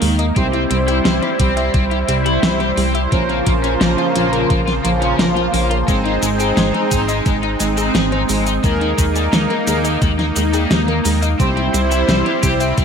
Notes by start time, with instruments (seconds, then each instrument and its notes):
Already playing: analog synth pad A#3 D#4
0.02 analog synth bass D#2, overdriven electric guitar D#3, synth arpeggio sound G#3, open hi-hat
0.19 overdriven electric guitar A#3, synth arpeggio sound D#5, closed hi-hat
0.36 analog synth bass C2, analog synth pad G3 E4 C5, synth arpeggio sound G3, overdriven electric guitar C4, analog polysynth C4 E4 G4 C5, kick, closed hi-hat
0.53 overdriven electric guitar C4, synth arpeggio sound E4, closed hi-hat
0.71 analog synth bass C2, synth arpeggio sound G3, overdriven electric guitar C4, closed hi-hat
0.88 overdriven electric guitar E4, synth arpeggio sound G4, closed hi-hat
1.05 analog synth bass C2, synth arpeggio sound G3, overdriven electric guitar C5, snare, closed hi-hat
1.22 overdriven electric guitar G4, synth arpeggio sound C5, closed hi-hat
1.40 analog synth bass C2, synth arpeggio sound G3, overdriven electric guitar C4, analog polysynth C4 E4 G4 C5, kick, closed hi-hat
1.57 overdriven electric guitar C4, synth arpeggio sound E5, closed hi-hat
1.74 analog synth bass C2, synth arpeggio sound G3, overdriven electric guitar C4, kick, closed hi-hat
1.91 synth arpeggio sound E4, overdriven electric guitar G4, closed hi-hat
2.09 analog synth bass C2, synth arpeggio sound G3, overdriven electric guitar C4, closed hi-hat
2.26 overdriven electric guitar E4, synth arpeggio sound G4, closed hi-hat
2.43 analog synth bass C2, synth arpeggio sound G3, overdriven electric guitar C5, snare, closed hi-hat
2.60 overdriven electric guitar G4, synth arpeggio sound C5, closed hi-hat
2.77 analog synth bass C2, synth arpeggio sound G3, overdriven electric guitar C4, open hi-hat
2.95 overdriven electric guitar G4, synth arpeggio sound E5, closed hi-hat
3.12 analog synth bass A#1, analog synth pad C#3 F3 A#3 F4, synth arpeggio sound F3, overdriven electric guitar A#3, analog polysynth C#4 F4 A#4 C5, kick, closed hi-hat
3.29 overdriven electric guitar A#3, synth arpeggio sound C4, closed hi-hat
3.47 analog synth bass A#1, synth arpeggio sound F3, overdriven electric guitar A#3, kick, closed hi-hat
3.64 overdriven electric guitar C#4, synth arpeggio sound C#4, closed hi-hat
3.81 analog synth bass A#1, synth arpeggio sound F3, overdriven electric guitar A#4, snare, closed hi-hat
3.98 synth arpeggio sound F4, overdriven electric guitar F4, closed hi-hat
4.15 analog synth bass A#1, synth arpeggio sound F3, overdriven electric guitar A#3, analog polysynth C#4 F4 A#4 C5, closed hi-hat
4.33 overdriven electric guitar A#3, synth arpeggio sound A#4, closed hi-hat
4.50 analog synth bass A#1, synth arpeggio sound F3, overdriven electric guitar A#3, kick, closed hi-hat
4.67 synth arpeggio sound C4, overdriven electric guitar F4, snare, closed hi-hat
4.84 analog synth bass A#1, synth arpeggio sound F3, overdriven electric guitar A#3, closed hi-hat
5.02 synth arpeggio sound C#4, overdriven electric guitar C#4, closed hi-hat
5.19 analog synth bass A#1, synth arpeggio sound F3, overdriven electric guitar A#4, snare, closed hi-hat
5.36 overdriven electric guitar F4, synth arpeggio sound F4, closed hi-hat
5.53 analog synth bass A#1, synth arpeggio sound F3, overdriven electric guitar A#3, open hi-hat
5.71 overdriven electric guitar F4, synth arpeggio sound A#4, closed hi-hat
5.88 analog synth bass G#1, synth arpeggio sound G#3, overdriven electric guitar G#3, analog synth pad G#3 C4 D#4, analog polysynth C4 D#4 G#4 C5, kick, closed hi-hat, shaker
6.05 overdriven electric guitar G#3, synth arpeggio sound D#4, closed hi-hat
6.22 analog synth bass G#1, overdriven electric guitar G#3, synth arpeggio sound G#3, closed hi-hat, shaker
6.40 overdriven electric guitar C4, synth arpeggio sound G#4, closed hi-hat, shaker
6.57 analog synth bass G#1, synth arpeggio sound G#3, overdriven electric guitar G#4, snare, closed hi-hat, shaker
6.74 overdriven electric guitar D#4, synth arpeggio sound C5, closed hi-hat
6.91 analog synth bass G#1, synth arpeggio sound G#3, analog polysynth C4 D#4 G#4 C5, overdriven electric guitar D#4, kick, closed hi-hat, shaker
7.08 overdriven electric guitar G#3, synth arpeggio sound D#5, closed hi-hat, shaker
7.26 analog synth bass G#1, synth arpeggio sound G#3, overdriven electric guitar G#3, kick, closed hi-hat, shaker
7.43 synth arpeggio sound D#4, overdriven electric guitar D#4, closed hi-hat
7.60 analog synth bass G#1, synth arpeggio sound G#3, overdriven electric guitar G#3, closed hi-hat, shaker
7.78 overdriven electric guitar C4, synth arpeggio sound G#4, closed hi-hat, shaker
7.95 analog synth bass G#1, synth arpeggio sound G#3, overdriven electric guitar G#4, snare, closed hi-hat, shaker
8.12 overdriven electric guitar D#4, synth arpeggio sound C5, closed hi-hat
8.29 analog synth bass G#1, synth arpeggio sound G#3, overdriven electric guitar G#3, open hi-hat, shaker
8.47 overdriven electric guitar D#4, synth arpeggio sound D#5, closed hi-hat, shaker
8.64 analog synth bass D#2, overdriven electric guitar D#3, synth arpeggio sound G#3, analog synth pad A#3 D#4, analog polysynth A#3 D#4 G#4 A#4, kick, closed hi-hat, shaker
8.81 overdriven electric guitar D#3, synth arpeggio sound D#4, closed hi-hat
8.98 analog synth bass D#2, overdriven electric guitar D#3, synth arpeggio sound G#3, kick, closed hi-hat, shaker
9.16 overdriven electric guitar G3, synth arpeggio sound G#4, closed hi-hat, shaker
9.33 analog synth bass D#2, synth arpeggio sound G#3, overdriven electric guitar D#4, snare, closed hi-hat, shaker
9.50 overdriven electric guitar A#3, synth arpeggio sound A#4, closed hi-hat
9.67 analog synth bass D#2, synth arpeggio sound G#3, analog polysynth A#3 D#4 G#4 A#4, overdriven electric guitar A#3, closed hi-hat, shaker
9.85 overdriven electric guitar D#3, synth arpeggio sound D#5, closed hi-hat, shaker
10.02 analog synth bass D#2, overdriven electric guitar D#3, synth arpeggio sound G#3, kick, closed hi-hat, shaker
10.19 overdriven electric guitar A#3, synth arpeggio sound D#4, snare, closed hi-hat
10.36 analog synth bass D#2, overdriven electric guitar D#3, synth arpeggio sound G#3, closed hi-hat, shaker
10.53 overdriven electric guitar G3, synth arpeggio sound G#4, closed hi-hat, shaker
10.71 analog synth bass D#2, synth arpeggio sound G#3, overdriven electric guitar D#4, snare, closed hi-hat, shaker
10.88 overdriven electric guitar A#3, synth arpeggio sound A#4, closed hi-hat
11.05 analog synth bass D#2, overdriven electric guitar D#3, synth arpeggio sound G#3, open hi-hat, shaker
11.22 overdriven electric guitar A#3, synth arpeggio sound D#5, closed hi-hat, shaker
11.39 analog synth bass C2, analog synth pad G3 E4 C5, synth arpeggio sound G3, overdriven electric guitar C4, analog polysynth C4 E4 G4 C5, kick, closed hi-hat, shaker
11.57 overdriven electric guitar C4, synth arpeggio sound E4, closed hi-hat
11.74 analog synth bass C2, synth arpeggio sound G3, overdriven electric guitar C4, closed hi-hat, shaker
11.91 overdriven electric guitar E4, synth arpeggio sound G4, closed hi-hat, shaker
12.09 analog synth bass C2, synth arpeggio sound G3, overdriven electric guitar C5, snare, closed hi-hat, shaker
12.26 overdriven electric guitar G4, synth arpeggio sound C5, closed hi-hat
12.43 analog synth bass C2, synth arpeggio sound G3, analog polysynth C4 E4 G4 C5, overdriven electric guitar G4, kick, closed hi-hat, shaker
12.60 overdriven electric guitar C4, synth arpeggio sound E5, closed hi-hat, shaker
12.78 analog synth bass C2, synth arpeggio sound G3, overdriven electric guitar C4, kick, closed hi-hat, shaker